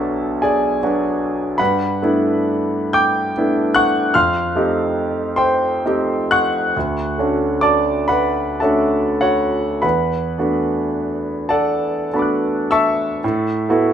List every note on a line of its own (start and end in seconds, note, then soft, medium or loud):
0.00 1.62 B1 soft
0.00 0.78 F#3 soft
0.00 0.79 B3 soft
0.00 0.79 D4 soft
0.00 0.79 F#4 soft
0.00 0.39 A4 soft
0.00 0.39 E5 soft
0.00 0.43 A5 medium
0.42 0.79 G#4 soft
0.42 0.79 D5 soft
0.42 0.81 G#5 medium
0.83 1.56 F#3 soft
0.83 1.56 B3 soft
0.83 1.56 D4 soft
0.83 1.56 F#4 soft
1.58 2.00 G2 soft
1.58 2.90 B4 medium
1.58 2.90 F#5 medium
1.58 2.93 B5 medium
2.02 3.32 A3 soft
2.02 3.32 B3 soft
2.02 3.32 D4 soft
2.02 3.32 E4 soft
2.93 3.71 G5 medium
2.93 3.71 D6 medium
2.93 3.75 G6 medium
3.37 4.12 A3 soft
3.37 4.12 B3 soft
3.37 4.12 D4 soft
3.37 4.12 E4 soft
3.75 4.12 F#5 medium
3.75 4.12 C#6 medium
3.75 4.14 F#6 medium
4.14 4.54 F2 soft
4.14 5.33 F5 medium
4.14 5.33 C6 medium
4.14 5.37 F6 medium
4.55 5.81 A3 soft
4.55 5.82 C4 soft
4.55 5.82 D#4 soft
4.55 5.82 G4 soft
5.36 6.28 C5 medium
5.36 6.28 G5 medium
5.36 6.31 C6 medium
5.85 6.71 A3 soft
5.85 6.72 C4 soft
5.85 6.72 D#4 soft
5.85 6.72 G4 soft
6.31 7.58 F#5 medium
6.31 7.58 C#6 medium
6.31 7.62 F#6 medium
6.77 7.17 D2 soft
7.18 8.59 A3 soft
7.18 8.59 C#4 soft
7.18 8.59 D4 soft
7.18 8.60 F#4 soft
7.61 8.06 D5 medium
7.61 8.06 A5 medium
7.61 8.09 D6 medium
8.08 8.59 B4 soft
8.08 8.58 F#5 soft
8.08 8.62 B5 medium
8.60 9.78 A3 soft
8.60 9.78 C#4 soft
8.60 9.79 D4 soft
8.60 9.20 F#4 soft
8.60 9.18 A4 soft
8.60 9.18 E5 soft
8.60 9.21 A5 soft
9.21 9.78 F#4 soft
9.21 9.78 C#5 soft
9.21 9.81 F#5 medium
9.82 10.37 E2 soft
9.82 11.46 B4 soft
9.82 11.46 F#5 soft
9.82 11.50 B5 medium
10.38 12.08 A3 soft
10.38 12.08 B3 soft
10.38 12.08 D4 soft
10.38 12.09 F#4 soft
11.49 12.67 A4 soft
11.49 12.68 D5 soft
11.49 12.68 F#5 soft
11.49 12.12 A5 medium
12.13 13.20 A3 soft
12.13 13.20 B3 soft
12.13 13.20 D4 soft
12.13 13.20 F#4 soft
12.13 12.70 A5 soft
12.13 13.21 B5 soft
12.19 13.22 D6 soft
12.19 13.24 F#6 soft
12.71 13.93 E5 medium
12.71 13.93 A5 medium
12.71 13.93 C#6 medium
12.71 13.93 E6 medium
13.24 13.68 A2 medium
13.69 13.93 A3 soft
13.69 13.93 B3 soft
13.69 13.93 E4 soft
13.69 13.93 F#4 soft